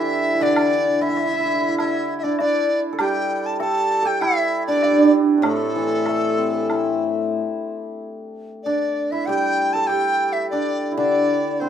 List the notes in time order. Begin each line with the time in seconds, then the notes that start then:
Already playing: E3 D4 E4 G4 A4 E5
0.34 E4
0.41 D3 D4 D5
0.56 high woodblock
1.01 E4 E5
1.09 E4
1.17 E4, low woodblock
1.26 E4
1.33 E4
1.39 E4
1.45 E4
1.55 E4
1.61 E4
1.68 E4
1.78 E4 E5, high woodblock
2.18 E5
2.23 D4 D5
2.39 D4 D5, low woodblock
2.93 A4
2.99 G3 G4 G5, high woodblock
3.46 A5
3.60 A4 A5, low woodblock
4.03 G4 A4
4.07 G5
4.21 E4 E5, high woodblock
4.67 D4 D5
4.76 D4
4.83 D4, low woodblock
4.92 D4
4.98 D4
5.04 D4
5.38 C4
5.42 A2 A3 A4, high woodblock
5.76 E3
6.06 A3, high woodblock, low woodblock
6.38 C4
6.70 E4, high woodblock
8.63 D4 D5
9.11 E4 E5
9.26 G3 G4 G5
9.73 A4 A5
9.87 G4 G5
10.33 E5
10.50 D4 D5
10.92 E4
10.97 D3 D4 D5
11.60 C4 C5